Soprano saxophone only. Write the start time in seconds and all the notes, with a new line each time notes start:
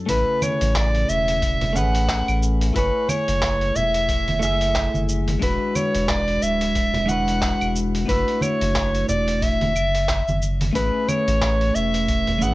0.10 B4
0.43 C#5
0.76 D5
1.09 E5
1.76 F#5
2.76 B4
3.09 C#5
3.76 E5
4.43 E5
5.43 B4
5.76 C#5
6.09 D5
6.43 E5
7.09 F#5
8.09 B4
8.42 C#5
9.09 D5
9.42 E5
10.75 B4
11.09 C#5
11.75 E5
12.43 F#5